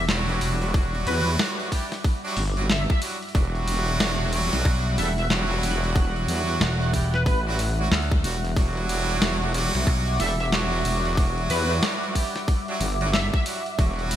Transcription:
Already playing: E1 G3 E5 F#5 D6
0.09 F#3 G3 D4 E4 F#4, snare, open hi-hat
0.29 open hi-hat
0.41 E1, open hi-hat
0.62 open hi-hat
0.74 F#3 G3 D4 E4 F#4, kick, open hi-hat
0.95 open hi-hat
1.06 E2 B4, open hi-hat
1.27 open hi-hat
1.39 snare
1.60 open hi-hat
1.72 G3 D4 E4 G4, kick, open hi-hat
1.92 snare, open hi-hat
2.04 kick, open hi-hat
2.24 F#3 G3 D4 E4 F#4, open hi-hat
2.37 G1, open hi-hat
2.57 F#3 G3 D4 E4 F#4, open hi-hat
2.70 E5, snare, open hi-hat
2.90 E5, kick, open hi-hat
3.02 F#3 G3 D4 E4 F#4, open hi-hat
3.23 open hi-hat
3.29 open hi-hat
3.35 E1 F#3 G3 D4 E4 F#4 F#6, kick, open hi-hat
3.45 open hi-hat
3.55 open hi-hat
3.68 open hi-hat
3.88 open hi-hat
4.00 E1, snare, open hi-hat
4.20 open hi-hat
4.33 F#3 G3 D4 E4 F#4, open hi-hat
4.53 B1, snare, open hi-hat
4.65 B1, kick, open hi-hat
4.86 open hi-hat
4.98 E1 G3 A3 D4 E4 A4 E5, snare, open hi-hat
5.18 E5, open hi-hat
5.30 F#3 G3 D4 E4 F#4, snare, open hi-hat
5.51 open hi-hat
5.63 E1, open hi-hat
5.84 open hi-hat
5.96 F#3 G3 D4 E4 F#4, kick, open hi-hat
6.16 open hi-hat
6.28 E2, open hi-hat
6.49 open hi-hat
6.60 E1, snare, open hi-hat
6.82 open hi-hat
6.93 G3 D4 E4 G4, kick, open hi-hat
7.14 B4, snare
7.26 A1 B4, kick, open hi-hat
7.47 F#3 G3 D4 E4 F#4
7.59 open hi-hat
7.79 F#3 G3 D4 E4 F#4, open hi-hat
7.86 open hi-hat
7.91 D2, snare, open hi-hat
8.02 open hi-hat
8.12 kick, open hi-hat
8.24 E1 F#3 G3 D4 E4 F#4, open hi-hat
8.45 open hi-hat
8.56 E1 F#3 G3 D4 E4 F#4 D6, kick, open hi-hat
8.77 open hi-hat
8.89 open hi-hat
9.10 open hi-hat
9.21 E1, snare, open hi-hat
9.42 open hi-hat
9.54 F#3 G3 D4 E4 F#4, open hi-hat
9.75 B1, snare, open hi-hat
9.87 B1, kick, open hi-hat
10.08 open hi-hat
10.19 E1 G3 A3 D4 E4 A4 E5, snare, open hi-hat
10.39 E5, open hi-hat
10.52 F#3 G3 D4 E4 F#4, snare, open hi-hat
10.73 open hi-hat
10.85 E1, open hi-hat
11.05 open hi-hat
11.17 F#3 G3 D4 E4 F#4, kick, open hi-hat
11.38 open hi-hat
11.50 E2 B4, open hi-hat
11.70 open hi-hat
11.83 snare, open hi-hat
12.03 open hi-hat
12.15 G3 D4 E4 G4, kick, open hi-hat
12.36 snare, open hi-hat
12.48 kick, open hi-hat
12.68 F#3 G3 D4 E4 F#4, open hi-hat
12.80 G1, open hi-hat
13.01 F#3 G3 D4 E4 F#4, open hi-hat
13.13 E5, snare, open hi-hat
13.34 E5, kick, open hi-hat
13.46 F#3 G3 D4 E4 F#4, open hi-hat
13.66 open hi-hat
13.78 E1 F#3 G3 D4 E4 F#4, kick, open hi-hat
13.99 open hi-hat
14.11 open hi-hat

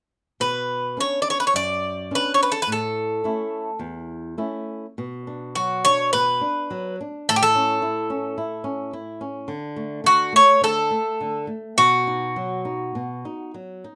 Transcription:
0.40 B2 B4
0.97 B3 C#4 D4 C#5
1.22 D5
1.30 C#5
1.40 B4
1.47 C#5
1.54 F#2 D5
2.11 B3 C#4 D4
2.15 B4
2.34 C#5
2.43 B4
2.52 A4
2.62 B4
2.67 A2
2.72 A4
3.24 A3 C#4 E4
3.79 E2
4.38 A3 C#4 E4
4.98 B2
5.27 D4
5.55 F#3 F#4
5.85 D4 C#5
6.13 B2 B4
6.41 D4
6.71 F#3
7.01 D4
7.29 A2 A4
7.36 G4
7.43 A4
7.55 C#4
7.82 E4
8.10 C#4
8.38 E4
8.64 C#4
8.93 E4
9.21 C#4
9.48 D3
9.76 A3
10.04 D3 F#4
10.33 A3 C#5
10.61 D3 A4
10.91 A3
11.21 D3
11.47 A3
11.78 B2 F#4
12.07 D#4
12.36 F#3
12.65 D#4
12.95 B2
13.25 D#4
13.54 F#3
13.84 D#4

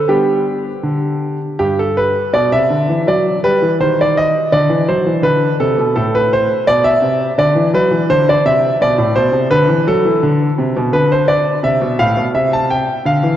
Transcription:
0.08 G3 B3 D4 G4
0.83 D3
1.59 G2 G4
1.79 A4
1.97 B4
2.33 B2 D5
2.52 C3 E5
2.70 D3
2.89 E3
3.07 F#3 D5
3.44 G3 B4
3.62 E3
3.80 D#3 C5
4.01 D5
4.17 D#5
4.52 D3 D5
4.70 E3
4.89 F#3 C5
5.06 E3
5.22 D3 B4
5.60 C3 A4
5.78 B2
5.96 A2 A4
6.15 B4
6.33 C5
6.67 B2 D5
6.84 E5
7.02 C3
7.38 D3 D5
7.55 E3
7.74 F#3 B4
7.91 E3
8.10 D3 C5
8.29 D5
8.46 C3 E5
8.81 B2 D5
8.98 A2
9.15 B2 C5
9.32 C3
9.50 D3 B4
9.69 E3
9.87 F#3 A4
10.05 E3
10.23 D3
10.59 C3
10.77 B2
10.93 D3 B4
11.12 C5
11.28 D5
11.63 C3 E5
11.81 B2
11.99 A2 F5
12.17 B2
12.35 C3 E5
12.53 A5
12.70 G5
13.05 D3 F5
13.23 E3

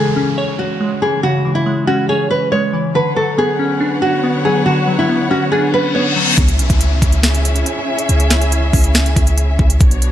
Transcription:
Already playing: C#3 E3 G#3 G#4, downlifter
0.16 C#4
0.38 C#5
0.59 F#4
0.81 G#3
1.02 E3 G#4
1.23 C#3 F#4
1.45 E3
1.55 E4
1.66 G#3
1.87 C#4 F#4
2.09 G#4 C#5
2.31 B4
2.52 G#3 C#5
2.73 E3
2.95 D3 B4 C#5 F#5
3.16 F#3 A4
3.38 B3 G#4
3.59 C#4
3.81 D4
4.02 F#4
4.23 B3
4.45 F#3 G#4
4.66 D3 F#4
4.88 F#3
4.99 E4
5.09 B3
5.31 C#4 F#4
5.52 D4 G#4, reverse cymbal
5.74 B4
5.95 B3 C#5
6.16 F#3
6.38 C#2 C#4 E4 G#4 E5, kick, closed hi-hat, downlifter
6.48 closed hi-hat
6.59 B1, closed hi-hat
6.70 C#2, kick, closed hi-hat
6.81 closed hi-hat
7.02 C#2, kick, closed hi-hat
7.12 closed hi-hat
7.23 finger snap, snare, closed hi-hat
7.35 closed hi-hat
7.45 closed hi-hat
7.56 closed hi-hat
7.66 closed hi-hat
7.99 closed hi-hat
8.09 C#2, closed hi-hat
8.20 closed hi-hat
8.30 finger snap, snare, closed hi-hat
8.42 closed hi-hat
8.52 closed hi-hat
8.73 C#2, kick, open hi-hat
8.84 closed hi-hat
8.95 finger snap, snare, closed hi-hat
9.06 closed hi-hat
9.16 C#2, kick, closed hi-hat
9.27 closed hi-hat
9.38 closed hi-hat
9.59 C#2, kick
9.70 closed hi-hat
9.81 B1 B3 D4 F#4 C#5, kick, closed hi-hat
9.91 closed hi-hat
10.02 closed hi-hat

